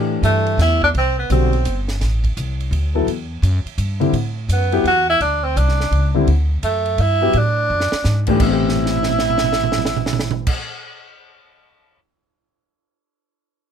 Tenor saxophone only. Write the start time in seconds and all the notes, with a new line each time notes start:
0.24 A3
0.61 E4
0.84 D4
0.98 C4
1.19 B3
1.32 C4
4.52 B3
4.87 F#4
5.10 E4
5.21 D4
5.44 C4
5.57 D4
6.64 A3
7.01 E4
7.37 D4
8.42 E4